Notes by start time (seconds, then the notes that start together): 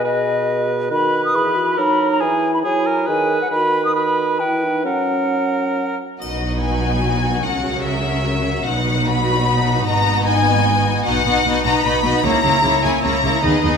Already playing: B2
0.05 G#4 B4 D#5
0.91 D#3 F#4 B4 B5
1.25 D#6
1.35 E3 G#4 B5
1.56 F#4
1.78 F#3 D#4 A#4 B5
2.12 A#5
2.20 E3 E4 G#4 G#5
2.54 B5
2.64 F#3 E4 G#4 G#5
2.86 A#4
3.07 D#3 G#4 B4 G#5
3.42 F#5
3.51 D#3 F#4 B4 B5
3.85 D#6
3.95 F#4 B4 B5
4.40 E3 E4 B4 G5
4.63 D#4
4.85 F#3 C#4 A#4 F#5
6.21 B1 B2 F#3 D#4 F#4 B4 D#5, triangle
6.62 G#5
7.44 C#2 C#3 C#4 A#4 F#5
7.85 E5
8.66 B1 B2 F#3 D#4 F#4 B4 F#5
9.08 B5
9.86 G#1 G#2 B3 D#5 A#5
10.27 G#5
11.05 B1 B2 B3 D#4 F#4 D#5 F#5
11.25 B1 B2 B3 D#4 F#4 D#5
11.44 B1 B2 B3 D#4 F#4 D#5
11.64 B1 B2 B3 D#4 F#4 D#5 A#5
11.84 B1 B2 B3 D#4 F#4 D#5 B5
12.04 B1 B2 B3 D#4 F#4 D#5
12.23 C#2 C#3 A#3 E4 C#5 A#5
12.43 C#2 C#3 A#3 E4 C#5
12.63 C#2 C#3 A#3 E4 C#5
12.83 C#2 C#3 A#3 E4 C#5 G#5
13.03 C#2 C#3 A#3 E4 C#5 A#5
13.23 C#2 C#3 A#3 E4 C#5
13.43 D#2 D#3 B3 D#4 G#4 B4 D#5
13.63 D#2 D#3 B3 D#4 G#4 B4